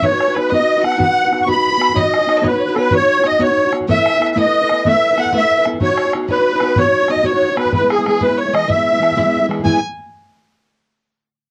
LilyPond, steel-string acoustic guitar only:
\new Staff \with { instrumentName = "Steel-string acoustic guitar" } { \time 12/8 \key e \major \tempo 4. = 125 <b dis' fis' b'>16 <dis' fis' b'>8 <dis' fis' b'>16 <b dis' fis' b'>8 <b dis' fis' b'>16 <fis' b'>8 <dis' fis' b'>16 <b dis' fis' b'>8 <b dis' fis' b'>16 <dis' fis' b'>8 <dis' fis' b'>16 <b dis' fis' b'>8 <b dis' fis' b'>16 <dis' fis' b'>8 <dis' fis' b'>16 <b dis' fis' b'>8 | <b dis' fis' cis''>16 <dis' fis' cis''>8 <dis' fis' cis''>16 <b dis' fis' cis''>8 <b dis' fis' cis''>16 <dis' fis' cis''>8 <dis' fis' cis''>16 <b dis' fis' cis''>8 <b dis' fis' cis''>16 <dis' fis' cis''>8 <dis' fis' cis''>16 <b dis' fis' cis''>8 <b dis' fis' cis''>16 <dis' fis'>8 <dis' fis' cis''>16 <b dis' fis' cis''>8 | <a b e' a' b'>16 <e' a'>8 <e' a' b'>16 <b e' a' b'>8 <a b e' a' b'>16 <e' a' b'>8 <e' a' b'>16 <b e' a' b'>8 <a b e' a' b'>16 <e' a' b'>8 <e' a' b'>16 <b e' a' b'>8 <a b e' a' b'>16 <e' a' b'>8 <e' a' b'>16 <b e' a' b'>8 | <b dis' fis' cis''>16 <dis' fis' cis''>8 <dis' fis' cis''>16 <b dis' fis' cis''>8 <b dis' fis' cis''>16 <dis' fis' cis''>8 <dis' fis' cis''>16 <b dis' fis' cis''>8 <b dis' fis' cis''>16 <dis' cis''>8 <dis' fis' cis''>16 <b dis' fis' cis''>8 <b dis' fis' cis''>16 <dis' fis' cis''>8 <dis' fis' cis''>16 <b dis' fis' cis''>8 |
<e gis b e'>16 <gis b e'>8 <gis b e'>16 <e gis b e'>8 <e gis b e'>16 <gis b e'>8 <gis b e'>16 <e gis b e'>8 <e gis b e'>16 <gis b e'>8 <gis b e'>16 <e gis b e'>8 <e gis b e'>16 <gis b e'>8 <gis b e'>16 <e gis b e'>8 | <e gis b e'>8 r1 r4. | }